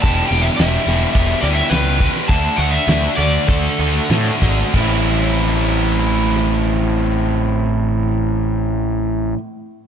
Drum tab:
CC |----------------|----------------|x---------------|----------------|
HH |x---x---x---x---|x---x---x---x---|----------------|----------------|
SD |----o-o-----o--o|----o-------o-o-|----------r-----|----------------|
BD |o-------o-----o-|o-------o-----o-|o---------------|----------------|